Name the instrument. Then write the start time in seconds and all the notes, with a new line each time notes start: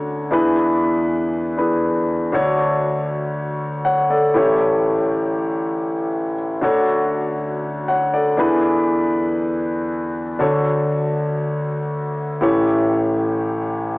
grand piano
Already playing: D2 D3 D4 F#4 A4 C#5
0.31 E2 E3 D4 E4 G#4 B4
1.57 D4 E4 G#4 B4
2.32 D2 D3 D4 F#4 A4 C#5
3.85 C#5 F#5
4.10 A4 D5
4.34 A1 A2 E4 G4 A4 C#5
6.61 D2 D3 D4 F#4 A4 C#5
7.88 C#5 F#5
8.14 A4 D5
8.37 E2 E3 D4 E4 G#4 B4
10.39 D2 D3 D4 F#4 A4 C#5
12.41 A1 A2 E4 G4 A4 C#5